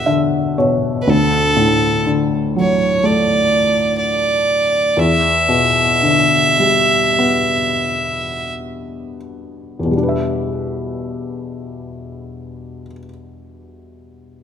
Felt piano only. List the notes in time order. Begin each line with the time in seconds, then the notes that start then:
Already playing: E2 D3 G3 F#5
0.06 D3 E5
0.58 B2 C#5
1.07 D2
1.56 A2
2.06 D3
2.56 F#3
3.04 A3
4.97 E2
5.49 B2
6.03 D3
6.60 G3
7.19 B3
9.79 E2
9.85 B2
9.91 G3
9.97 D4
10.03 B4
10.09 E5